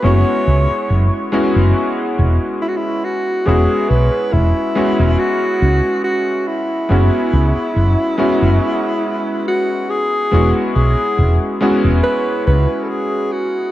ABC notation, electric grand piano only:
X:1
M:4/4
L:1/8
Q:"Swing 16ths" 1/4=70
K:E
V:1 name="Electric grand piano"
[G,B,CEF]3 [G,B,CEF] z4 | [G,B,CEF]3 [G,B,CEF] z4 | [G,B,CEF]3 [G,B,CEF] z4 | [G,B,CEF]3 [G,B,CEF] z4 |]